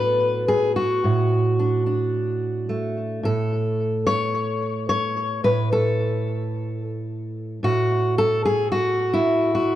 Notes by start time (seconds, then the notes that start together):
Already playing: A2 F#3 B3 D4 B4
0.48 G#4
0.76 F#4
1.04 A2
1.59 D4
1.86 D4
2.69 A3
3.23 A2 A4
4.07 C#5
4.89 C#5
5.44 A2 B4
5.73 A4
7.63 A2 F#4
8.18 A4
8.45 G#4
8.72 F#4
9.13 E4
9.55 F#4